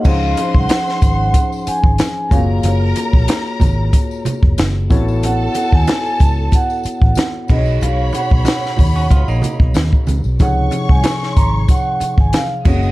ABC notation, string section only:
X:1
M:4/4
L:1/8
Q:"Swing 16ths" 1/4=93
K:Db
V:1 name="String section"
[cc']6 z [Bb]- | [Bb]6 z [=A=a]- | [=A=a]6 z [d_c']- | [d_c']6- [dc'] z |
[dd']6 z [ee'] |]